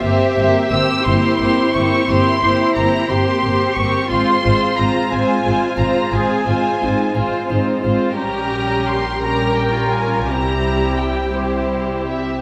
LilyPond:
<<
  \new Staff \with { instrumentName = "Violin section" } { \time 12/8 \key f \minor \tempo 4. = 58 e''4 e'''8 c'''4 des'''8 c'''4 bes''8 c'''4 des'''8 | c'''4 bes''8 aes''4 bes''8 aes''2 r4 | bes''4 c'''8 bes''8 g''8 aes''8 bes''4 g''8 c''4 e''8 | }
  \new Staff \with { instrumentName = "Violin section" } { \time 12/8 \key f \minor << { c''8 c''8 c''8 c''8 c''8 c''8 c''8 c''8 c''8 c''8 c''8 c''8 | c''8 c''8 c''8 c''8 c''8 c''8 c''8 c''8 c''8 c''8 c''8 c''8 | bes'4. bes'4. g'4. g'4. | } \\ { g'8 g'8 g'8 g'8 g'8 g'8 g'8 g'8 g'8 g'8 g'8 g'8 | f'8 f'8 f'8 f'8 f'8 f'8 f'8 f'8 f'8 f'8 f'8 f'8 | g'4. g'8. f'8. e'4. e'4. | } >> }
  \new Staff \with { instrumentName = "Cello section" } { \time 12/8 \key f \minor g'4. e'4. e'4. g'4. | f'4. f'4. aes'8 f'8 ees'8 f'8 ees'8 f'8 | g'4. bes'4. g'2. | }
  \new Staff \with { instrumentName = "Viola section" } { \time 12/8 \key f \minor <bes c'>8 <bes c'>8 <bes c'>8 <bes c'>8 <bes c'>8 <bes c'>8 <bes c'>8 <bes c'>8 <bes c'>8 <bes c'>8 <bes c'>8 <bes c'>8 | <aes c'>8 <aes c'>8 <aes c'>8 <aes c'>8 <aes c'>8 <aes c'>8 <aes c'>8 <aes c'>8 <aes c'>8 <aes c'>8 <aes c'>8 <aes c'>8 | <g des'>4. <g des'>4. <g c'>4. <g c'>4. | }
  \new Staff \with { instrumentName = "Double bass section" } { \clef bass \time 12/8 \key f \minor g,,8 g,,8 g,,8 g,,8 g,,8 g,,8 g,,8 g,,8 g,,8 g,,8 g,,8 g,,8 | aes,,8 aes,,8 aes,,8 aes,,8 aes,,8 aes,,8 aes,,8 aes,,8 aes,,8 aes,,8 aes,,8 aes,,8 | bes,,2. c,2. | }
>>